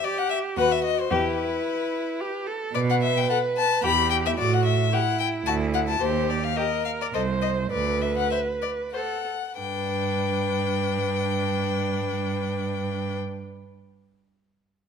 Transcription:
0.03 viola G4, violin D5
0.18 violin F#5
0.30 violin E5
0.57 cello D#2, viola F#4, violin B4 F#5
0.71 violin E5
0.84 violin D#5
1.00 violin C5
1.11 cello E2, viola E4, violin G4 B4
2.20 viola G4
2.47 viola A4
2.74 cello B2, viola B4, violin D5
2.90 violin F#5
3.02 violin E5
3.17 violin G5
3.29 violin A4 F#5
3.57 violin A5
3.83 cello E2, viola G4, violin G4 B5
4.10 violin G5
4.26 violin E5
4.37 cello A2, viola F#4, violin D5
4.53 violin F#5
4.65 violin E5
4.92 viola E4, violin G4 F#5
5.19 violin G5
5.46 cello D2, violin F#4 A5
5.74 violin F#5
5.88 violin A5
6.00 cello D#2, viola G4, violin C5
6.29 violin D5
6.44 violin F5
6.56 violin G4 D#5, viola A#4
6.85 violin F5
7.01 violin D5
7.13 cello C2, violin A4 D#5, viola C5
7.42 violin D#5
7.71 cello D2, viola B4, violin D5
8.01 violin E5
8.17 violin F#5
8.31 violin C5 E5
8.62 violin D5
8.94 viola A4, violin C5 F#5
9.59 cello G2, viola D4, violin B4 G5

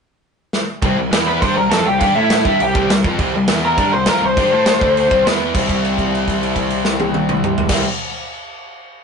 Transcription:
0.53 snare
0.82 picked electric bass C2, overdriven electric guitar C3 G3 C4, kick, crash
0.96 picked electric bass C2, overdriven electric guitar C3 G3
1.11 picked electric bass E2, overdriven electric guitar E3 B3, snare, crash
1.16 overdriven electric guitar E4
1.27 lead electric guitar B4 B5
1.41 picked electric bass G2, overdriven electric guitar G3 D4 G4, lead electric guitar C5 C6, kick, crash
1.56 picked electric bass C2, overdriven electric guitar C3 G3, lead electric guitar A#4 A#5
1.70 picked electric bass F2, overdriven electric guitar F3 C4 F4, lead electric guitar A4 A5, snare, crash
1.86 picked electric bass C2, overdriven electric guitar C3 G3, lead electric guitar G4 G5
1.99 picked electric bass G2, overdriven electric guitar G3 D4 G4, lead electric guitar G4 F5 G5, kick, crash
2.14 picked electric bass A2, overdriven electric guitar A3 E4 A4, lead electric guitar E4 E5
2.30 snare, crash
2.44 picked electric bass G2, overdriven electric guitar G3 D4 G4, lead electric guitar E4 E5, kick
2.58 picked electric bass C2, overdriven electric guitar C3 G3, lead electric guitar G5, crash
2.64 lead electric guitar G4
2.73 picked electric bass C2, overdriven electric guitar C3 G3 C4, kick
2.88 picked electric bass C2, overdriven electric guitar C3 G3, snare, crash
3.03 picked electric bass F2, overdriven electric guitar F3 C4 F4, kick
3.19 picked electric bass C2, overdriven electric guitar C3 G3 C4, kick, crash
3.35 picked electric bass C2, overdriven electric guitar C3 G3
3.48 picked electric bass E2, overdriven electric guitar E3 B3 E4, snare, crash
3.65 lead electric guitar A#4 A#5
3.77 picked electric bass G2, overdriven electric guitar G3 D4 G4, kick, crash
3.93 picked electric bass C2, overdriven electric guitar C3 G3, lead electric guitar C5 C6
4.06 picked electric bass F2, overdriven electric guitar F3 C4 F4, lead electric guitar A#4 A#5, snare, crash
4.21 picked electric bass C2, overdriven electric guitar C3 G3, lead electric guitar C5 C6
4.37 picked electric bass G2, overdriven electric guitar G3 D4 G4, kick, crash
4.52 picked electric bass A2, overdriven electric guitar A3 E4 A4
4.66 snare, crash
4.81 picked electric bass D2, overdriven electric guitar D3 A3 D4, kick
4.97 crash
5.11 picked electric bass C2, overdriven electric guitar C3 G3 C4, kick
5.25 picked electric bass E2, overdriven electric guitar E3 B3 E4, snare, crash
5.54 picked electric bass C2, overdriven electric guitar C3 G3 C4, kick, crash
5.58 overdriven electric guitar E4
5.69 kick, crash
5.85 crash
5.98 kick, crash
6.15 crash
6.28 kick, crash
6.43 crash
6.56 kick, crash
6.70 crash
6.85 snare
7.00 high tom
7.14 high tom
7.29 mid tom
7.44 mid tom
7.58 floor tom
7.69 picked electric bass C2, overdriven electric guitar C3 G3 C4 E4, kick, snare, crash

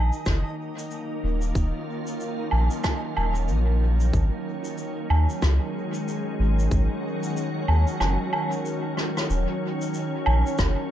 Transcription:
Already playing: sub bass A#1, ambient pad D#3 F#3 A#3, synth texture D#4 D#5
0.12 cabasa
0.26 sub bass F#1, kick, cross-stick, cabasa
0.54 ambient pad C#4
0.78 cabasa
0.87 ambient pad F4, cabasa
1.23 sub bass D#1
1.41 cabasa
1.55 sub bass D#1, kick, cabasa
2.07 cabasa
2.20 cabasa
2.51 sub bass A#1, low woodblock
2.70 cabasa
2.84 kick, cross-stick, cabasa, low woodblock
3.17 sub bass D#1, low woodblock
3.35 cabasa
3.48 sub bass A#1, cabasa
4.00 cabasa
4.13 sub bass G#1, kick, cabasa
4.64 cabasa
4.78 cabasa
4.98 ambient pad G#3
5.10 sub bass D#2, low woodblock
5.29 cabasa
5.42 sub bass C#2, kick, cross-stick, cabasa
5.94 cabasa
6.08 cabasa
6.39 sub bass G#1
6.47 ambient pad F#4
6.59 cabasa
6.71 sub bass G#1, kick, cabasa
7.23 cabasa
7.37 cabasa
7.68 sub bass D#2, low woodblock
7.87 cabasa
8.00 sub bass F#1, cross-stick, cabasa, low woodblock
8.33 low woodblock
8.52 cabasa
8.65 cabasa
8.97 cross-stick
9.17 cross-stick, cabasa
9.30 sub bass D#1, cabasa
9.81 cabasa
9.94 cabasa
10.26 sub bass A#1, low woodblock
10.32 ambient pad A#3
10.46 cabasa
10.58 sub bass F#1, kick, cross-stick, cabasa

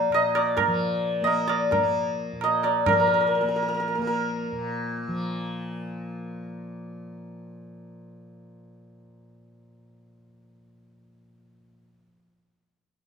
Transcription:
Already playing: tanpura F3 A#3, santur D5 F5 G5
0.10 tanpura A#2, tabla na
0.14 santur D#5
0.35 santur D5, tabla na
0.57 santur A#4, tabla na, tabla ge
0.67 tanpura F3
1.22 tanpura A#3, santur D#5
1.27 tabla na
1.47 santur D5, tabla na
1.71 santur A#4, tabla na, tabla ge
1.77 tanpura A#3
2.32 tanpura A#2
2.41 santur D#5, tabla na
2.63 santur D5, tabla na
2.86 tanpura F3, santur A#4, tabla na, tabla ge
2.93 santur A#4
3.00 santur A#4
3.08 santur A#4
3.14 santur A#4
3.20 santur A#4
3.27 santur A#4
3.35 santur A#4
3.41 tanpura A#3, santur A#4
3.49 santur A#4
3.56 santur A#4
3.63 santur A#4
3.68 santur A#4
3.74 santur A#4
3.80 santur A#4
3.88 santur A#4
3.95 tanpura A#3, santur A#4
4.02 santur A#4
4.07 santur A#4
4.52 tanpura A#2
5.08 tanpura F3

